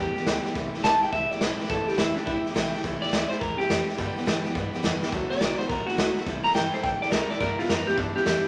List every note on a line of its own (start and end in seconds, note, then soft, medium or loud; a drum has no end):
0.00 0.16 E2 medium
0.00 0.16 E3 medium
0.00 0.16 G3 medium
0.00 0.16 B3 medium
0.00 0.15 G4 medium
0.00 0.25 G4 loud
0.16 0.26 E3 soft
0.16 0.27 G3 soft
0.16 0.27 B3 soft
0.16 0.26 G4 medium
0.16 muted upright bass stroke medium
0.16 snare soft
0.26 0.45 D2 medium
0.26 0.45 G2 medium
0.26 0.45 D3 medium
0.26 0.45 E3 loud
0.26 0.45 G3 loud
0.26 0.43 B3 loud
0.26 0.42 G4 loud
0.26 snare loud
0.26 hi-hat pedal medium
0.43 0.54 E3 soft
0.43 0.55 G3 medium
0.43 0.55 B3 medium
0.43 0.54 G4 medium
0.43 muted upright bass stroke medium
0.43 snare soft
0.55 0.73 C2 loud
0.55 0.73 C3 medium
0.55 0.73 E3 medium
0.55 0.74 A3 medium
0.55 0.74 E4 medium
0.55 0.72 G4 medium
0.55 kick loud
0.55 snare soft
0.74 0.84 A3 medium
0.74 0.84 E4 medium
0.74 0.84 G4 medium
0.74 muted upright bass stroke medium
0.74 snare soft
0.79 snare soft
0.84 1.02 B1 medium
0.84 1.02 C3 medium
0.84 1.02 E3 medium
0.84 1.03 A3 loud
0.84 1.03 E4 medium
0.84 1.01 G4 loud
0.84 1.02 A5 loud
0.84 snare loud
0.84 hi-hat pedal medium
1.03 1.13 A3 soft
1.03 1.14 E4 medium
1.03 1.13 G4 medium
1.03 1.12 G5 medium
1.03 muted upright bass stroke medium
1.03 snare soft
1.12 1.30 C2 loud
1.12 1.31 E3 medium
1.12 1.32 A3 medium
1.12 1.32 E4 medium
1.12 1.30 G4 medium
1.12 1.31 E5 medium
1.12 kick loud
1.12 snare soft
1.31 1.41 A3 soft
1.31 1.41 E4 medium
1.31 1.41 G4 medium
1.31 1.41 D5 medium
1.31 snare soft
1.41 1.59 A1 loud
1.41 1.59 C3 medium
1.41 1.60 E3 medium
1.41 1.60 A3 medium
1.41 1.60 E4 medium
1.41 1.58 G4 loud
1.41 1.60 C5 medium
1.41 snare loud
1.41 hi-hat pedal medium
1.59 1.69 A3 soft
1.59 1.69 E4 medium
1.59 1.69 G4 medium
1.59 1.70 B4 medium
1.59 muted upright bass stroke medium
1.59 snare soft
1.65 snare soft
1.69 1.87 G1 loud
1.69 1.88 C3 medium
1.69 1.88 E3 medium
1.69 1.88 A3 medium
1.69 1.88 E4 medium
1.69 1.86 G4 medium
1.69 1.88 A4 medium
1.69 kick loud
1.69 snare soft
1.87 1.97 A3 soft
1.87 1.98 E4 medium
1.87 1.98 G4 medium
1.87 muted upright bass stroke medium
1.87 snare soft
1.93 snare soft
1.97 2.16 E1 loud
1.97 2.16 C3 medium
1.97 2.16 E3 medium
1.97 2.17 A3 medium
1.97 2.16 E4 medium
1.97 2.16 E4 loud
1.97 2.15 G4 loud
1.97 snare loud
1.97 hi-hat pedal medium
2.16 2.25 A3 soft
2.16 2.26 D4 medium
2.16 2.26 E4 soft
2.16 2.26 G4 medium
2.16 snare soft
2.25 2.44 A1 medium
2.25 2.44 E3 medium
2.25 2.45 A3 medium
2.25 2.44 E4 loud
2.25 2.45 E4 medium
2.25 2.43 G4 medium
2.25 kick loud
2.25 snare soft
2.44 2.54 A3 soft
2.44 2.55 E4 medium
2.44 2.55 G4 medium
2.44 muted upright bass stroke medium
2.44 snare soft
2.54 2.73 B1 loud
2.54 2.73 C3 loud
2.54 2.73 E3 loud
2.54 2.74 A3 loud
2.54 2.73 E4 loud
2.54 2.72 G4 loud
2.54 snare loud
2.54 hi-hat pedal medium
2.73 2.84 A3 soft
2.73 2.84 E4 medium
2.73 2.84 G4 medium
2.73 muted upright bass stroke medium
2.73 snare soft
2.83 3.01 C2 medium
2.83 3.02 C3 medium
2.83 3.02 E3 medium
2.83 3.03 A3 loud
2.83 3.02 E4 medium
2.83 3.01 G4 medium
2.83 kick loud
2.83 snare soft
3.02 3.12 A3 soft
3.02 3.12 E4 medium
3.02 3.12 G4 medium
3.02 3.29 D5 loud
3.02 muted upright bass stroke medium
3.02 snare soft
3.08 3.30 C3 medium
3.08 snare soft
3.12 3.30 D2 medium
3.12 3.31 E3 medium
3.12 3.31 A3 medium
3.12 3.31 E4 loud
3.12 3.30 G4 medium
3.12 snare loud
3.12 hi-hat pedal loud
3.29 3.41 A3 medium
3.29 3.42 E4 medium
3.29 3.41 G4 medium
3.29 3.40 C5 medium
3.29 muted upright bass stroke medium
3.29 snare soft
3.40 3.59 E2 medium
3.40 3.59 E3 medium
3.40 3.60 A3 medium
3.40 3.60 E4 medium
3.40 3.58 G4 medium
3.40 3.58 A#4 loud
3.40 kick loud
3.40 snare soft
3.58 3.70 E4 medium
3.58 3.86 G4 loud
3.58 3.70 G4 medium
3.58 muted upright bass stroke medium
3.58 snare soft
3.62 3.70 A3 soft
3.70 3.87 F2 loud
3.70 3.88 C3 medium
3.70 3.89 E3 medium
3.70 3.89 A3 medium
3.70 3.88 E4 loud
3.70 3.87 G4 loud
3.70 snare loud
3.70 hi-hat pedal medium
3.88 3.99 A3 soft
3.88 3.99 E4 medium
3.88 3.98 G4 medium
3.88 snare soft
3.94 4.16 G2 medium
3.94 snare soft
3.98 4.16 G2 loud
3.98 4.17 D3 medium
3.98 4.17 E3 medium
3.98 4.17 G3 medium
3.98 4.16 B3 medium
3.98 4.15 G4 medium
3.98 kick loud
3.98 snare soft
4.16 4.25 E3 medium
4.16 4.26 G3 medium
4.16 4.26 B3 medium
4.16 4.26 G4 medium
4.16 snare soft
4.26 4.44 G2 loud
4.26 4.44 G#2 medium
4.26 4.45 D3 loud
4.26 4.45 E3 loud
4.26 4.45 G3 loud
4.26 4.44 B3 loud
4.26 4.43 G4 loud
4.26 snare loud
4.26 hi-hat pedal loud
4.44 4.54 E3 medium
4.44 4.55 G3 medium
4.44 4.55 B3 medium
4.44 4.55 G4 medium
4.44 muted upright bass stroke medium
4.44 snare soft
4.55 4.73 G2 medium
4.55 4.74 E3 medium
4.55 4.74 G3 medium
4.55 4.73 B3 medium
4.55 4.72 G4 medium
4.55 kick loud
4.55 snare soft
4.73 4.83 E3 medium
4.73 4.83 G3 medium
4.73 4.83 B3 medium
4.73 4.84 G4 medium
4.73 muted upright bass stroke medium
4.73 snare soft
4.83 5.02 E2 loud
4.83 5.02 G2 loud
4.83 5.02 D3 loud
4.83 5.02 E3 loud
4.83 5.02 G3 loud
4.83 5.01 B3 loud
4.83 5.00 G4 loud
4.83 snare loud
4.83 hi-hat pedal medium
5.02 5.12 E3 medium
5.02 5.13 G3 medium
5.02 5.12 B3 medium
5.02 5.12 G4 medium
5.02 snare medium
5.12 5.30 D2 loud
5.12 5.30 D3 medium
5.12 5.31 F#3 medium
5.12 5.31 A3 medium
5.12 5.30 B3 medium
5.12 5.29 F#4 medium
5.12 kick loud
5.12 snare soft
5.30 5.41 A3 soft
5.30 5.41 B3 soft
5.30 5.40 F#4 medium
5.30 5.58 D5 loud
5.30 muted upright bass stroke medium
5.30 snare soft
5.36 snare soft
5.41 5.58 B1 medium
5.41 5.59 D3 medium
5.41 5.59 F#3 loud
5.41 5.60 A3 medium
5.41 5.60 B3 medium
5.41 5.58 F#4 loud
5.41 snare loud
5.41 hi-hat pedal medium
5.58 5.69 A3 soft
5.58 5.70 B3 medium
5.58 5.69 F#4 medium
5.58 5.69 C5 medium
5.58 muted upright bass stroke medium
5.58 snare soft
5.69 5.87 A1 loud
5.69 5.87 F#3 medium
5.69 5.88 A3 medium
5.69 5.88 B3 medium
5.69 5.86 F#4 medium
5.69 5.87 A#4 medium
5.69 kick loud
5.69 snare soft
5.87 5.97 A3 soft
5.87 5.97 B3 medium
5.87 6.15 F#4 loud
5.87 5.98 F#4 medium
5.87 muted upright bass stroke medium
5.87 snare soft
5.97 6.16 D2 loud
5.97 6.16 D3 medium
5.97 6.16 F#3 medium
5.97 6.16 A3 medium
5.97 6.16 B3 medium
5.97 6.15 F#4 medium
5.97 snare loud
5.97 hi-hat pedal medium
6.16 6.26 A3 soft
6.16 6.27 B3 medium
6.16 6.26 F#4 medium
6.16 muted upright bass stroke medium
6.16 snare soft
6.26 6.44 C2 loud
6.26 6.44 C3 medium
6.26 6.45 E3 medium
6.26 6.45 G3 medium
6.26 6.44 E4 medium
6.26 6.42 A4 medium
6.26 kick loud
6.26 snare soft
6.43 6.53 G3 soft
6.43 6.54 E4 medium
6.43 6.54 A4 medium
6.43 6.54 A#5 loud
6.43 snare soft
6.50 6.72 C3 medium
6.50 6.73 E3 loud
6.50 6.73 G3 medium
6.50 snare soft
6.55 6.73 G1 medium
6.55 6.72 E4 medium
6.55 6.71 A4 medium
6.55 6.73 G5 medium
6.55 snare loud
6.55 hi-hat pedal medium
6.72 6.83 G3 medium
6.72 6.83 E4 medium
6.72 6.83 A4 medium
6.72 6.83 C5 medium
6.72 snare soft
6.83 7.01 A1 medium
6.83 7.01 E3 medium
6.83 7.02 G3 medium
6.83 7.02 E4 medium
6.83 7.00 A4 medium
6.83 7.01 G5 loud
6.83 kick loud
6.83 snare soft
7.02 7.11 G3 soft
7.02 7.11 E4 medium
7.02 7.12 A4 medium
7.02 7.11 D5 loud
7.02 snare soft
7.11 7.30 C2 loud
7.11 7.30 C3 medium
7.11 7.30 E3 medium
7.11 7.30 G3 medium
7.11 7.30 E4 loud
7.11 7.28 A4 medium
7.11 7.29 A#4 medium
7.11 snare loud
7.11 hi-hat pedal medium
7.30 7.40 G3 soft
7.30 7.41 E4 medium
7.30 7.40 A4 medium
7.30 7.40 D5 medium
7.30 muted upright bass stroke medium
7.30 snare soft
7.40 7.58 G2 medium
7.40 7.58 G2 loud
7.40 7.59 D3 medium
7.40 7.59 E3 medium
7.40 7.59 G3 medium
7.40 7.59 B3 medium
7.40 7.58 E4 medium
7.40 7.58 A#4 loud
7.40 kick loud
7.40 snare soft
7.59 7.69 E3 soft
7.59 7.70 G3 medium
7.59 7.69 B3 medium
7.59 7.69 E4 medium
7.59 7.69 F4 medium
7.59 muted upright bass stroke medium
7.59 snare soft
7.64 snare soft
7.69 7.87 F2 loud
7.69 7.87 G2 medium
7.69 7.88 D3 medium
7.69 7.88 E3 medium
7.69 7.88 G3 loud
7.69 7.87 B3 medium
7.69 7.86 E4 loud
7.69 7.87 A#4 medium
7.69 snare loud
7.69 hi-hat pedal medium
7.87 7.95 E3 soft
7.87 7.97 G3 soft
7.87 7.98 B3 medium
7.87 7.97 E4 medium
7.87 7.97 G4 medium
7.87 muted upright bass stroke medium
7.87 snare soft
7.96 8.15 G2 medium
7.96 8.15 E3 medium
7.96 8.16 G3 medium
7.96 8.15 B3 medium
7.96 8.15 D4 loud
7.96 8.14 E4 medium
7.96 kick loud
7.96 snare soft
8.15 8.25 E3 soft
8.15 8.26 G3 soft
8.15 8.26 B3 medium
8.15 8.25 E4 medium
8.15 8.24 G4 medium
8.15 muted upright bass stroke medium
8.15 snare soft
8.25 8.44 E2 loud
8.25 8.44 G2 medium
8.25 8.44 D3 medium
8.25 8.44 E3 medium
8.25 8.45 G3 loud
8.25 8.44 B3 medium
8.25 8.43 E4 loud
8.25 8.48 G4 loud
8.25 snare loud
8.25 hi-hat pedal medium
8.44 8.48 E4 medium
8.44 muted upright bass stroke medium
8.44 snare soft